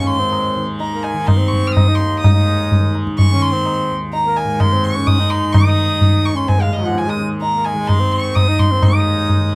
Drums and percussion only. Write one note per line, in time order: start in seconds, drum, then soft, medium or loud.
0.32 tabla na medium
0.80 tabla tin medium
1.04 tabla na medium
1.28 tabla na medium
1.28 tabla ge medium
1.53 tabla ge medium
1.77 tabla na medium
1.77 tabla ge medium
2.00 tabla te medium
2.24 tabla na loud
2.24 tabla ge medium
2.72 tabla tin medium
2.72 tabla ge medium
2.95 tabla na medium
3.07 tabla ke medium
3.19 tabla tin medium
3.19 tabla ge medium
3.66 tabla na medium
4.13 tabla tin medium
4.36 tabla na medium
4.60 tabla na medium
4.60 tabla ge medium
5.07 tabla tin medium
5.07 tabla ge medium
5.31 tabla na medium
5.54 tabla na loud
5.54 tabla ge medium
6.01 tabla tin medium
6.01 tabla ge medium
6.25 tabla na medium
6.49 tabla tin medium
6.49 tabla ge medium
6.95 tabla te medium
7.19 tabla te medium
7.42 tabla tin medium
7.66 tabla na medium
7.89 tabla na medium
7.89 tabla ge medium
8.36 tabla na medium
8.36 tabla ge medium
8.59 tabla ge medium
8.82 tabla na loud
8.82 tabla ge medium
9.29 tabla tin medium
9.29 tabla ge medium